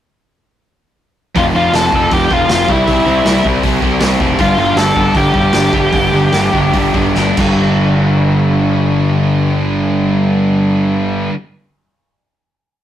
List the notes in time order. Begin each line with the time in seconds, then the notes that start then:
1.36 F1 F2 C3 F3 A3 C4 F4 F5, kick, open hi-hat
1.55 F1 F2 C3 F3 F4 F5
1.73 F1 F2 C3 F3 A4 A5, snare, open hi-hat
1.92 F1 F2 C3 F3 A3 C4 F4 A4 A5, kick
2.11 F1 F2 C3 F3 G4 G5, kick, open hi-hat
2.31 F1 F2 C3 F3 F4 F5, kick
2.49 F1 F2 C3 F3 A3 C4 F4 F5, snare, open hi-hat
2.69 C2 C3 G3 C4 E4 G4 E5, kick
2.87 C2 C3 G3 C4, kick, open hi-hat
3.06 C2 C3 G3 C4
3.25 C2 C3 G3 C4 E4 G4, snare, open hi-hat
3.45 C2 C3 G3 C4, kick
3.63 C2 C3 G3 C4, kick, open hi-hat
3.81 C2 C3 G3 C4 E4 G4, kick
4.01 C2 C3 G3 C4, snare, open hi-hat
4.20 F1 C3 G3 C4, kick
4.39 G1 G2 D3 G3 B3 D4 F4 G4 F5, kick, open hi-hat
4.57 G1 G2 D3 G3 F4 F5
4.76 G1 G2 D3 G3 A4 A5, snare, open hi-hat
4.94 G1 G2 D3 G3 B3 D4 G4, kick
5.15 G1 G2 D3 G3 G4 G5, kick, open hi-hat
5.34 G1 G2 D3 G3, kick
5.53 G1 G2 D3 G3 B3 D4 G4, snare, open hi-hat
5.73 G1 G2 D3 G3, kick
5.93 G1 G2 D3 G3 B3 D4 G4, kick, open hi-hat
6.12 G1 G2 D3 G3
6.32 G1 G2 D3 G3, snare, open hi-hat
6.52 G1 G2 D3 G3 B3 D4 G4, kick
6.73 G1 G2 D3 G3, kick, open hi-hat
6.94 G1 G2 D3 G3, kick
7.15 G1 G2 D3 G3 B3 D4 G4, snare
7.37 G1 G2 D3 B3 D4, kick, crash
7.41 G3